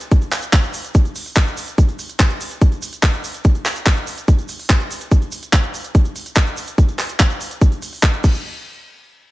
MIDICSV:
0, 0, Header, 1, 2, 480
1, 0, Start_track
1, 0, Tempo, 416667
1, 132, Time_signature, 4, 2, 24, 8
1, 10730, End_track
2, 0, Start_track
2, 0, Title_t, "Drums"
2, 13, Note_on_c, 9, 42, 53
2, 13, Note_on_c, 9, 82, 43
2, 128, Note_off_c, 9, 42, 0
2, 128, Note_off_c, 9, 82, 0
2, 132, Note_on_c, 9, 36, 124
2, 132, Note_on_c, 9, 42, 51
2, 132, Note_on_c, 9, 82, 54
2, 248, Note_off_c, 9, 36, 0
2, 248, Note_off_c, 9, 42, 0
2, 248, Note_off_c, 9, 82, 0
2, 250, Note_on_c, 9, 82, 27
2, 252, Note_on_c, 9, 42, 25
2, 366, Note_off_c, 9, 82, 0
2, 368, Note_off_c, 9, 42, 0
2, 369, Note_on_c, 9, 82, 96
2, 372, Note_on_c, 9, 39, 61
2, 372, Note_on_c, 9, 46, 110
2, 482, Note_off_c, 9, 82, 0
2, 482, Note_on_c, 9, 82, 43
2, 488, Note_off_c, 9, 39, 0
2, 488, Note_off_c, 9, 46, 0
2, 492, Note_on_c, 9, 42, 52
2, 597, Note_off_c, 9, 82, 0
2, 608, Note_off_c, 9, 42, 0
2, 612, Note_on_c, 9, 36, 124
2, 612, Note_on_c, 9, 82, 59
2, 613, Note_on_c, 9, 39, 118
2, 613, Note_on_c, 9, 42, 51
2, 727, Note_off_c, 9, 82, 0
2, 728, Note_off_c, 9, 36, 0
2, 728, Note_off_c, 9, 39, 0
2, 728, Note_off_c, 9, 42, 0
2, 732, Note_on_c, 9, 42, 26
2, 733, Note_on_c, 9, 82, 27
2, 847, Note_off_c, 9, 82, 0
2, 847, Note_on_c, 9, 82, 99
2, 848, Note_off_c, 9, 42, 0
2, 852, Note_on_c, 9, 46, 109
2, 962, Note_off_c, 9, 82, 0
2, 968, Note_off_c, 9, 46, 0
2, 973, Note_on_c, 9, 42, 49
2, 977, Note_on_c, 9, 82, 44
2, 1088, Note_off_c, 9, 42, 0
2, 1090, Note_off_c, 9, 82, 0
2, 1090, Note_on_c, 9, 82, 52
2, 1092, Note_on_c, 9, 36, 124
2, 1092, Note_on_c, 9, 42, 51
2, 1205, Note_off_c, 9, 82, 0
2, 1208, Note_off_c, 9, 36, 0
2, 1208, Note_off_c, 9, 42, 0
2, 1212, Note_on_c, 9, 42, 25
2, 1221, Note_on_c, 9, 82, 30
2, 1328, Note_off_c, 9, 42, 0
2, 1330, Note_off_c, 9, 82, 0
2, 1330, Note_on_c, 9, 82, 91
2, 1333, Note_on_c, 9, 46, 112
2, 1446, Note_off_c, 9, 82, 0
2, 1448, Note_off_c, 9, 46, 0
2, 1453, Note_on_c, 9, 46, 62
2, 1455, Note_on_c, 9, 82, 42
2, 1568, Note_off_c, 9, 46, 0
2, 1570, Note_off_c, 9, 82, 0
2, 1570, Note_on_c, 9, 82, 53
2, 1572, Note_on_c, 9, 36, 126
2, 1573, Note_on_c, 9, 39, 116
2, 1685, Note_off_c, 9, 82, 0
2, 1688, Note_off_c, 9, 36, 0
2, 1688, Note_off_c, 9, 39, 0
2, 1693, Note_on_c, 9, 42, 26
2, 1698, Note_on_c, 9, 82, 27
2, 1808, Note_off_c, 9, 42, 0
2, 1812, Note_off_c, 9, 82, 0
2, 1812, Note_on_c, 9, 82, 99
2, 1813, Note_on_c, 9, 46, 111
2, 1927, Note_off_c, 9, 82, 0
2, 1928, Note_off_c, 9, 46, 0
2, 1932, Note_on_c, 9, 42, 52
2, 1939, Note_on_c, 9, 82, 37
2, 2048, Note_off_c, 9, 42, 0
2, 2053, Note_on_c, 9, 36, 121
2, 2053, Note_on_c, 9, 42, 52
2, 2054, Note_off_c, 9, 82, 0
2, 2060, Note_on_c, 9, 82, 48
2, 2168, Note_off_c, 9, 36, 0
2, 2168, Note_off_c, 9, 42, 0
2, 2173, Note_on_c, 9, 42, 25
2, 2175, Note_off_c, 9, 82, 0
2, 2177, Note_on_c, 9, 82, 27
2, 2288, Note_off_c, 9, 42, 0
2, 2292, Note_off_c, 9, 82, 0
2, 2292, Note_on_c, 9, 46, 107
2, 2295, Note_on_c, 9, 82, 86
2, 2407, Note_off_c, 9, 46, 0
2, 2410, Note_off_c, 9, 82, 0
2, 2410, Note_on_c, 9, 82, 40
2, 2412, Note_on_c, 9, 42, 52
2, 2525, Note_off_c, 9, 82, 0
2, 2528, Note_off_c, 9, 42, 0
2, 2531, Note_on_c, 9, 82, 53
2, 2532, Note_on_c, 9, 36, 122
2, 2532, Note_on_c, 9, 39, 118
2, 2532, Note_on_c, 9, 42, 52
2, 2638, Note_off_c, 9, 82, 0
2, 2638, Note_on_c, 9, 82, 28
2, 2648, Note_off_c, 9, 36, 0
2, 2648, Note_off_c, 9, 39, 0
2, 2648, Note_off_c, 9, 42, 0
2, 2652, Note_on_c, 9, 42, 26
2, 2754, Note_off_c, 9, 82, 0
2, 2768, Note_off_c, 9, 42, 0
2, 2773, Note_on_c, 9, 46, 110
2, 2775, Note_on_c, 9, 82, 89
2, 2888, Note_off_c, 9, 46, 0
2, 2890, Note_off_c, 9, 82, 0
2, 2893, Note_on_c, 9, 42, 50
2, 2900, Note_on_c, 9, 82, 40
2, 3008, Note_off_c, 9, 42, 0
2, 3010, Note_off_c, 9, 82, 0
2, 3010, Note_on_c, 9, 82, 57
2, 3012, Note_on_c, 9, 36, 122
2, 3012, Note_on_c, 9, 42, 51
2, 3125, Note_off_c, 9, 82, 0
2, 3128, Note_off_c, 9, 36, 0
2, 3128, Note_off_c, 9, 42, 0
2, 3133, Note_on_c, 9, 42, 25
2, 3138, Note_on_c, 9, 82, 28
2, 3248, Note_off_c, 9, 42, 0
2, 3251, Note_off_c, 9, 82, 0
2, 3251, Note_on_c, 9, 82, 100
2, 3252, Note_on_c, 9, 46, 111
2, 3367, Note_off_c, 9, 82, 0
2, 3368, Note_off_c, 9, 46, 0
2, 3372, Note_on_c, 9, 42, 50
2, 3377, Note_on_c, 9, 82, 43
2, 3488, Note_off_c, 9, 42, 0
2, 3492, Note_on_c, 9, 36, 122
2, 3492, Note_on_c, 9, 39, 114
2, 3492, Note_on_c, 9, 42, 49
2, 3493, Note_off_c, 9, 82, 0
2, 3496, Note_on_c, 9, 82, 52
2, 3608, Note_off_c, 9, 36, 0
2, 3608, Note_off_c, 9, 39, 0
2, 3608, Note_off_c, 9, 42, 0
2, 3611, Note_off_c, 9, 82, 0
2, 3612, Note_on_c, 9, 42, 27
2, 3620, Note_on_c, 9, 82, 26
2, 3728, Note_off_c, 9, 42, 0
2, 3732, Note_on_c, 9, 46, 107
2, 3735, Note_off_c, 9, 82, 0
2, 3736, Note_on_c, 9, 82, 86
2, 3847, Note_off_c, 9, 46, 0
2, 3851, Note_off_c, 9, 82, 0
2, 3852, Note_on_c, 9, 82, 36
2, 3853, Note_on_c, 9, 42, 53
2, 3965, Note_off_c, 9, 82, 0
2, 3965, Note_on_c, 9, 82, 51
2, 3968, Note_off_c, 9, 42, 0
2, 3972, Note_on_c, 9, 36, 117
2, 3973, Note_on_c, 9, 42, 53
2, 4080, Note_off_c, 9, 82, 0
2, 4088, Note_off_c, 9, 36, 0
2, 4088, Note_off_c, 9, 42, 0
2, 4090, Note_on_c, 9, 82, 25
2, 4092, Note_on_c, 9, 42, 26
2, 4206, Note_off_c, 9, 82, 0
2, 4208, Note_off_c, 9, 42, 0
2, 4212, Note_on_c, 9, 39, 58
2, 4212, Note_on_c, 9, 46, 102
2, 4217, Note_on_c, 9, 82, 83
2, 4328, Note_off_c, 9, 39, 0
2, 4328, Note_off_c, 9, 46, 0
2, 4332, Note_off_c, 9, 82, 0
2, 4332, Note_on_c, 9, 42, 53
2, 4336, Note_on_c, 9, 82, 40
2, 4447, Note_off_c, 9, 42, 0
2, 4451, Note_off_c, 9, 82, 0
2, 4452, Note_on_c, 9, 36, 117
2, 4452, Note_on_c, 9, 39, 115
2, 4452, Note_on_c, 9, 42, 54
2, 4452, Note_on_c, 9, 82, 54
2, 4567, Note_off_c, 9, 39, 0
2, 4567, Note_off_c, 9, 42, 0
2, 4568, Note_off_c, 9, 36, 0
2, 4568, Note_off_c, 9, 82, 0
2, 4572, Note_on_c, 9, 42, 28
2, 4576, Note_on_c, 9, 82, 26
2, 4687, Note_off_c, 9, 42, 0
2, 4690, Note_off_c, 9, 82, 0
2, 4690, Note_on_c, 9, 82, 84
2, 4692, Note_on_c, 9, 46, 104
2, 4805, Note_off_c, 9, 82, 0
2, 4807, Note_off_c, 9, 46, 0
2, 4811, Note_on_c, 9, 82, 42
2, 4812, Note_on_c, 9, 42, 52
2, 4927, Note_off_c, 9, 42, 0
2, 4927, Note_off_c, 9, 82, 0
2, 4931, Note_on_c, 9, 82, 51
2, 4932, Note_on_c, 9, 36, 115
2, 4932, Note_on_c, 9, 42, 54
2, 5047, Note_off_c, 9, 42, 0
2, 5047, Note_off_c, 9, 82, 0
2, 5048, Note_off_c, 9, 36, 0
2, 5052, Note_on_c, 9, 42, 27
2, 5059, Note_on_c, 9, 82, 26
2, 5168, Note_off_c, 9, 42, 0
2, 5168, Note_off_c, 9, 82, 0
2, 5168, Note_on_c, 9, 82, 88
2, 5172, Note_on_c, 9, 46, 107
2, 5283, Note_off_c, 9, 82, 0
2, 5287, Note_off_c, 9, 46, 0
2, 5287, Note_on_c, 9, 82, 38
2, 5293, Note_on_c, 9, 46, 60
2, 5402, Note_off_c, 9, 82, 0
2, 5408, Note_off_c, 9, 46, 0
2, 5412, Note_on_c, 9, 36, 119
2, 5413, Note_on_c, 9, 39, 115
2, 5413, Note_on_c, 9, 82, 49
2, 5528, Note_off_c, 9, 36, 0
2, 5528, Note_off_c, 9, 39, 0
2, 5528, Note_off_c, 9, 82, 0
2, 5533, Note_on_c, 9, 42, 27
2, 5533, Note_on_c, 9, 82, 24
2, 5648, Note_off_c, 9, 42, 0
2, 5648, Note_off_c, 9, 82, 0
2, 5652, Note_on_c, 9, 46, 106
2, 5659, Note_on_c, 9, 82, 87
2, 5767, Note_off_c, 9, 46, 0
2, 5771, Note_off_c, 9, 82, 0
2, 5771, Note_on_c, 9, 82, 41
2, 5773, Note_on_c, 9, 42, 54
2, 5886, Note_off_c, 9, 82, 0
2, 5888, Note_off_c, 9, 42, 0
2, 5892, Note_on_c, 9, 36, 113
2, 5892, Note_on_c, 9, 82, 51
2, 5893, Note_on_c, 9, 42, 57
2, 6007, Note_off_c, 9, 82, 0
2, 6008, Note_off_c, 9, 36, 0
2, 6008, Note_off_c, 9, 42, 0
2, 6013, Note_on_c, 9, 42, 26
2, 6015, Note_on_c, 9, 82, 23
2, 6125, Note_off_c, 9, 82, 0
2, 6125, Note_on_c, 9, 82, 90
2, 6128, Note_off_c, 9, 42, 0
2, 6132, Note_on_c, 9, 46, 98
2, 6240, Note_off_c, 9, 82, 0
2, 6248, Note_off_c, 9, 46, 0
2, 6252, Note_on_c, 9, 42, 54
2, 6255, Note_on_c, 9, 82, 36
2, 6368, Note_off_c, 9, 42, 0
2, 6370, Note_off_c, 9, 82, 0
2, 6372, Note_on_c, 9, 36, 115
2, 6373, Note_on_c, 9, 39, 119
2, 6373, Note_on_c, 9, 42, 56
2, 6376, Note_on_c, 9, 82, 52
2, 6487, Note_off_c, 9, 36, 0
2, 6488, Note_off_c, 9, 39, 0
2, 6488, Note_off_c, 9, 42, 0
2, 6491, Note_off_c, 9, 82, 0
2, 6493, Note_on_c, 9, 42, 28
2, 6496, Note_on_c, 9, 82, 23
2, 6608, Note_off_c, 9, 42, 0
2, 6611, Note_off_c, 9, 82, 0
2, 6613, Note_on_c, 9, 46, 104
2, 6615, Note_on_c, 9, 82, 84
2, 6728, Note_off_c, 9, 46, 0
2, 6731, Note_off_c, 9, 82, 0
2, 6732, Note_on_c, 9, 82, 38
2, 6733, Note_on_c, 9, 42, 54
2, 6847, Note_off_c, 9, 82, 0
2, 6848, Note_off_c, 9, 42, 0
2, 6851, Note_on_c, 9, 82, 54
2, 6852, Note_on_c, 9, 36, 118
2, 6853, Note_on_c, 9, 42, 53
2, 6967, Note_off_c, 9, 82, 0
2, 6968, Note_off_c, 9, 36, 0
2, 6968, Note_off_c, 9, 42, 0
2, 6970, Note_on_c, 9, 82, 26
2, 6972, Note_on_c, 9, 42, 27
2, 7085, Note_off_c, 9, 82, 0
2, 7088, Note_off_c, 9, 42, 0
2, 7092, Note_on_c, 9, 46, 105
2, 7095, Note_on_c, 9, 82, 82
2, 7208, Note_off_c, 9, 46, 0
2, 7210, Note_off_c, 9, 82, 0
2, 7211, Note_on_c, 9, 82, 40
2, 7212, Note_on_c, 9, 42, 53
2, 7322, Note_off_c, 9, 82, 0
2, 7322, Note_on_c, 9, 82, 50
2, 7328, Note_off_c, 9, 42, 0
2, 7332, Note_on_c, 9, 36, 119
2, 7332, Note_on_c, 9, 39, 116
2, 7332, Note_on_c, 9, 42, 54
2, 7438, Note_off_c, 9, 82, 0
2, 7447, Note_off_c, 9, 36, 0
2, 7448, Note_off_c, 9, 39, 0
2, 7448, Note_off_c, 9, 42, 0
2, 7453, Note_on_c, 9, 42, 28
2, 7456, Note_on_c, 9, 82, 25
2, 7568, Note_off_c, 9, 42, 0
2, 7569, Note_off_c, 9, 82, 0
2, 7569, Note_on_c, 9, 82, 90
2, 7572, Note_on_c, 9, 46, 104
2, 7685, Note_off_c, 9, 82, 0
2, 7688, Note_off_c, 9, 46, 0
2, 7690, Note_on_c, 9, 82, 41
2, 7692, Note_on_c, 9, 42, 56
2, 7805, Note_off_c, 9, 82, 0
2, 7808, Note_off_c, 9, 42, 0
2, 7812, Note_on_c, 9, 36, 116
2, 7813, Note_on_c, 9, 42, 57
2, 7818, Note_on_c, 9, 82, 50
2, 7927, Note_off_c, 9, 36, 0
2, 7928, Note_off_c, 9, 42, 0
2, 7933, Note_off_c, 9, 82, 0
2, 7933, Note_on_c, 9, 42, 27
2, 7936, Note_on_c, 9, 82, 26
2, 8048, Note_off_c, 9, 42, 0
2, 8052, Note_off_c, 9, 82, 0
2, 8052, Note_on_c, 9, 82, 89
2, 8053, Note_on_c, 9, 39, 64
2, 8053, Note_on_c, 9, 46, 102
2, 8163, Note_off_c, 9, 82, 0
2, 8163, Note_on_c, 9, 82, 36
2, 8168, Note_off_c, 9, 39, 0
2, 8168, Note_off_c, 9, 46, 0
2, 8173, Note_on_c, 9, 42, 55
2, 8278, Note_off_c, 9, 82, 0
2, 8288, Note_off_c, 9, 42, 0
2, 8290, Note_on_c, 9, 82, 45
2, 8292, Note_on_c, 9, 36, 116
2, 8292, Note_on_c, 9, 39, 123
2, 8292, Note_on_c, 9, 42, 58
2, 8405, Note_off_c, 9, 82, 0
2, 8407, Note_off_c, 9, 36, 0
2, 8408, Note_off_c, 9, 39, 0
2, 8408, Note_off_c, 9, 42, 0
2, 8412, Note_on_c, 9, 42, 29
2, 8412, Note_on_c, 9, 82, 27
2, 8527, Note_off_c, 9, 82, 0
2, 8528, Note_off_c, 9, 42, 0
2, 8533, Note_on_c, 9, 46, 106
2, 8534, Note_on_c, 9, 82, 94
2, 8648, Note_off_c, 9, 46, 0
2, 8650, Note_off_c, 9, 82, 0
2, 8652, Note_on_c, 9, 42, 55
2, 8657, Note_on_c, 9, 82, 37
2, 8768, Note_off_c, 9, 42, 0
2, 8772, Note_off_c, 9, 82, 0
2, 8772, Note_on_c, 9, 36, 120
2, 8772, Note_on_c, 9, 42, 57
2, 8774, Note_on_c, 9, 82, 48
2, 8887, Note_off_c, 9, 36, 0
2, 8888, Note_off_c, 9, 42, 0
2, 8889, Note_off_c, 9, 82, 0
2, 8892, Note_on_c, 9, 42, 27
2, 8899, Note_on_c, 9, 82, 26
2, 9008, Note_off_c, 9, 42, 0
2, 9012, Note_off_c, 9, 82, 0
2, 9012, Note_on_c, 9, 46, 105
2, 9012, Note_on_c, 9, 82, 96
2, 9128, Note_off_c, 9, 46, 0
2, 9128, Note_off_c, 9, 82, 0
2, 9132, Note_on_c, 9, 46, 58
2, 9137, Note_on_c, 9, 82, 40
2, 9246, Note_off_c, 9, 82, 0
2, 9246, Note_on_c, 9, 82, 46
2, 9248, Note_off_c, 9, 46, 0
2, 9252, Note_on_c, 9, 36, 122
2, 9252, Note_on_c, 9, 39, 123
2, 9361, Note_off_c, 9, 82, 0
2, 9367, Note_off_c, 9, 36, 0
2, 9368, Note_off_c, 9, 39, 0
2, 9372, Note_on_c, 9, 42, 29
2, 9372, Note_on_c, 9, 82, 24
2, 9487, Note_off_c, 9, 82, 0
2, 9488, Note_off_c, 9, 42, 0
2, 9492, Note_on_c, 9, 36, 112
2, 9492, Note_on_c, 9, 49, 88
2, 9493, Note_on_c, 9, 82, 95
2, 9607, Note_off_c, 9, 36, 0
2, 9607, Note_off_c, 9, 49, 0
2, 9608, Note_off_c, 9, 82, 0
2, 9613, Note_on_c, 9, 82, 37
2, 9729, Note_off_c, 9, 82, 0
2, 10730, End_track
0, 0, End_of_file